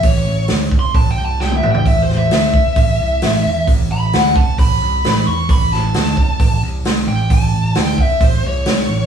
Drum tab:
HH |o---o---o-------|o---o---o---o---|o---o---o---o---|o---o---o---o---|
SD |----o-------o---|--o-o-------o---|----o-------oo--|--o-o-------oo--|
T1 |-------------o--|----------------|----------------|----------------|
T2 |--------------o-|----------------|----------------|----------------|
FT |---------------o|----------------|----------------|----------------|
BD |o-----o-o-------|o-----o-o-------|o-----o-o-------|o-----o-o-------|

HH |o---o---o---o---|
SD |----o-------oo--|
T1 |----------------|
T2 |----------------|
FT |----------------|
BD |o-----o-o-------|